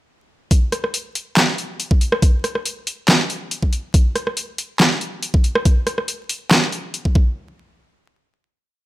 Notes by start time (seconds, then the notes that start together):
0.51 kick, closed hi-hat
0.72 cross-stick, closed hi-hat
0.84 cross-stick
0.94 closed hi-hat
1.15 open hi-hat
1.37 snare, clap, closed hi-hat
1.58 closed hi-hat
1.80 closed hi-hat
1.91 kick
2.01 closed hi-hat
2.12 cross-stick
2.22 kick, closed hi-hat
2.44 cross-stick, closed hi-hat
2.55 cross-stick
2.66 closed hi-hat
2.87 open hi-hat
3.08 snare, clap, closed hi-hat
3.30 closed hi-hat
3.51 closed hi-hat
3.62 kick
3.73 closed hi-hat
3.94 kick, closed hi-hat
4.16 cross-stick, closed hi-hat
4.27 cross-stick
4.37 closed hi-hat
4.58 open hi-hat
4.80 snare, clap, closed hi-hat
5.01 closed hi-hat
5.22 closed hi-hat
5.34 kick
5.44 closed hi-hat
5.55 cross-stick
5.65 kick, closed hi-hat
5.87 cross-stick, closed hi-hat
5.98 cross-stick
6.08 closed hi-hat
6.29 open hi-hat
6.51 snare, clap, closed hi-hat
6.72 closed hi-hat
6.94 closed hi-hat
7.05 kick
7.15 kick